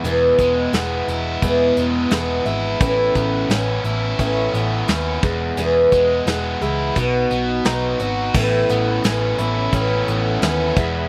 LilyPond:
<<
  \new Staff \with { instrumentName = "Tonewheel organ" } { \time 4/4 \key a \lydian \tempo 4 = 87 r1 | r1 | r1 | <a' cis'' b''>2.~ <a' cis'' b''>8 <gis' e'' b''>8 | }
  \new Staff \with { instrumentName = "Overdriven electric guitar" } { \time 4/4 \key a \lydian e,8 gis8 b8 e'8 b8 gis8 b8 e'8 | a,8 b8 cis'8 e'8 cis'8 b8 cis'8 e,8 | e,8 gis8 b8 e'8 b,8 b8 dis'8 fis'8 | a,8 b8 cis'8 e'8 cis'8 b8 cis'8 e,8 | }
  \new Staff \with { instrumentName = "Twelve-string acoustic guitar" } { \time 4/4 \key a \lydian <e, b, e gis b e'>4 <e gis b e'>4 <e, b, e gis b e'>4 <e gis b e'>8 <e gis b e'>8 | <a, e b cis' e'>4 <e b cis' e'>4 <a, e b cis' e'>4 <b cis' e'>8 <e gis b gis'>8 | <e, b, e gis b gis'>4 <e gis b gis'>8 <e gis b gis'>8 <b, fis b dis' fis'>4 <fis b dis' fis'>8 <b dis' fis'>8 | <a, e b cis' e'>4 <e b cis' e'>8 <b cis' e'>8 <a, e b cis' e'>4 <b cis' e'>8 <e gis b e'>8 | }
  \new Staff \with { instrumentName = "Picked electric bass" } { \clef bass \time 4/4 \key a \lydian e,,8 e,,8 e,,8 e,,8 e,,8 e,,8 e,,8 gis,,8 | a,,8 a,,8 a,,8 a,,8 a,,8 a,,8 dis,8 e,,8 | e,,8 e,,8 e,,8 cis,8 b,,8 b,,8 b,,8 gis,,8 | a,,8 a,,8 a,,8 a,,8 a,,8 a,,8 dis,8 e,,8 | }
  \new DrumStaff \with { instrumentName = "Drums" } \drummode { \time 4/4 hh8 <hh bd>8 <hh sn>8 hh8 <hh bd>8 hh8 <hh sn>8 hh8 | <hh bd>8 <hh bd>8 <hh sn>8 hh8 <hh bd>8 hh8 <hh sn>8 <hh bd>8 | hh8 <hh bd>8 <hh sn>8 hh8 <hh bd>8 hh8 <hh sn>8 hh8 | <cymc bd>8 hh8 <hh sn>8 hh8 <hh bd>8 hh8 <hh sn>8 <hh bd>8 | }
>>